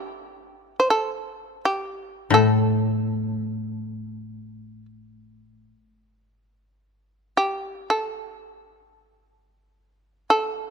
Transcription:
Already playing: G4
0.80 C5
0.90 A4
1.65 G4
2.30 A2 A4
7.37 G4
7.90 A4
10.30 A4

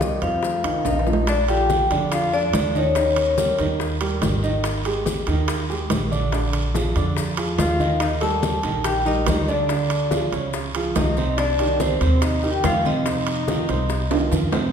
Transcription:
Already playing: C2
0.01 D#3 G3 G4 D#5, high bongo, high conga, low timbale, maracas
0.22 F2 F3 C4 C5 F5, high conga, high timbale, maracas
0.43 A3 A4, high bongo, high conga, maracas
0.64 C2 D#3 D#4, high bongo, high conga, high timbale, maracas
0.85 A#1 D#4 D#5, high bongo, high conga, high timbale, maracas
0.99 high timbale
1.06 F3 F4, low bongo, maracas
1.13 low timbale
1.27 D4 D5, high bongo, high conga, high timbale, long guiro, maracas
1.48 F3 F4 G4 A4 G5, high bongo, high conga, high timbale, maracas
1.70 high bongo, high conga, low timbale, short guiro, maracas
1.91 F2 D3 D4 D5, high timbale, short guiro, maracas
2.12 F4 F5, high bongo, high conga, high timbale, long guiro, maracas
2.33 F3 D4 F4 A4 D5, high bongo, high conga, maracas
2.53 D#2, high bongo, low bongo, high conga, high timbale, low timbale, short guiro, maracas
2.75 D#3 C#4 D#4 C#5 D#5, high bongo, high conga, short guiro, maracas
2.95 D#3 D#4 D#5, high bongo, high timbale, long guiro, maracas
3.16 high bongo, high conga, high timbale, maracas
3.38 G3 G4 A#4, high bongo, high conga, low timbale, short guiro, maracas
3.59 D#2 D#3 D#4 D#5, high conga, high timbale, short guiro, maracas
3.80 high bongo, high conga, long guiro, maracas
4.01 G3 G4 A#4, high bongo, high conga, high timbale, maracas
4.22 G#1, high bongo, low bongo, high conga, high timbale, low timbale, short guiro, maracas
4.43 D#3 D#4 D#5, high bongo, short guiro, maracas
4.64 high bongo, high conga, high timbale, long guiro, maracas
4.85 G#3 G4 G#4, high bongo, high conga, high timbale, maracas
5.06 high bongo, high conga, low timbale, short guiro, maracas
5.27 D#2 D#3 D#4 D#5, high timbale, short guiro, maracas
5.48 high bongo, high conga, high timbale, long guiro, maracas
5.69 G#3 G4 G#4, high bongo, high conga, maracas
5.90 A#1, high bongo, low bongo, high conga, high timbale, low timbale, short guiro, maracas
6.11 D3 D4 D5, high bongo, high conga, short guiro, maracas
6.32 D3 D4 D5, high bongo, high conga, high timbale, long guiro, maracas
6.53 high bongo, high conga, high timbale, maracas
6.74 F3 F4 G#4, high bongo, high conga, low timbale, short guiro, maracas
6.96 F2 D3 D4 D5, high conga, high timbale, short guiro, maracas
7.17 high bongo, high conga, long guiro, maracas
7.37 F3 F4 G#4, high bongo, high conga, high timbale, maracas
7.58 D#2 F4 F5, high bongo, low bongo, high conga, high timbale, low timbale, short guiro, maracas
7.79 D#3 D#4 D#5, high bongo, high conga, short guiro, maracas
8.00 D#4 D#5, high bongo, high conga, high timbale, long guiro, maracas
8.21 G3 A#3 G4 A4 A5, high bongo, high conga, high timbale, maracas
8.42 high bongo, high conga, low timbale, short guiro, maracas
8.63 A#1 D#3 D#4 D#5, high timbale, short guiro, maracas
8.84 G4 G5, high bongo, high conga, high timbale, long guiro, maracas
9.05 G3 D#4 G4 A#4 D#5, high bongo, high conga, maracas
9.27 D2, high bongo, low bongo, high conga, high timbale, low timbale, short guiro, maracas
9.48 D3 D4 D5, high bongo, short guiro, maracas
9.69 D3 D4 D5, high bongo, high conga, high timbale, long guiro, maracas
9.90 high bongo, high conga, high timbale, maracas
10.11 F3 F4 G#4, high bongo, high conga, low timbale, short guiro, maracas
10.32 C#2 C#3 C#4 C#5, high conga, high timbale, short guiro, maracas
10.54 high bongo, high conga, long guiro, maracas
10.75 F3 F4 G#4, high bongo, high conga, high timbale, maracas
10.96 C2 D#4 D#5, high bongo, low bongo, high conga, high timbale, low timbale, short guiro, maracas
11.17 C3 C4 C5, high bongo, short guiro, maracas
11.37 D4 D5, high bongo, high conga, high timbale, long guiro, maracas
11.59 D#3 D#4 G4, high bongo, high conga, high timbale, maracas
11.80 C4 C5, high bongo, high conga, low timbale, short guiro, maracas
12.01 D#2 C3 C4 C5, high timbale, short guiro, maracas
12.22 D#4 D#5, high bongo, high conga, high timbale, long guiro, maracas
12.43 D#3 D#4 G4, high bongo, high conga, maracas
12.51 G4 G5
12.64 F2 F4 F5, high bongo, low bongo, high conga, high timbale, low timbale, short guiro, maracas
12.85 C3 C4 D#4 C5 D#5, high bongo, high conga, short guiro, maracas
13.06 C3 C4 C5, high bongo, high conga, high timbale, long guiro, maracas
13.27 high bongo, high conga, high timbale, maracas
13.48 D#3 D#4 F4, high bongo, high conga, low timbale, short guiro, maracas
13.69 C2 C3 C4 C5, high conga, high timbale, short guiro, maracas
13.90 high bongo, high conga, long guiro, maracas
14.11 D#3 D#4 F4, high bongo, high conga, high timbale, maracas
14.32 F2, high conga, high timbale, short guiro, maracas
14.52 C3 C4 C5, low bongo, low timbale, short guiro, maracas

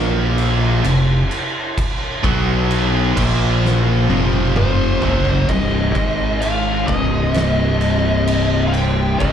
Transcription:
Already playing: A#1 A#2 F3 A#3
0.38 crash
0.84 F1 F2 C3, crash
1.31 crash
1.78 kick, crash
2.24 B1 B2 F#3 B3, kick, crash
2.71 crash
3.17 A#1 A#2 F3 A#3, kick, crash
3.65 snare
4.09 F1 F2 C3 F3, high tom
4.33 high tom
4.56 C5, mid tom
5.01 F#1 F#2 C#3 F#3, floor tom
5.25 floor tom
5.48 C1 C2 G2 C3 D#5, kick, crash
5.94 G#1 G#2 D#3 G#3, kick, crash
6.42 F5, crash
6.87 C1 C2 G2 C3 D#5, kick, crash
7.34 snare, crash
7.81 crash
8.28 crash
8.67 F5
8.72 G5, crash
9.20 C#1 C#2 G#2 C#3 D#5, kick, crash

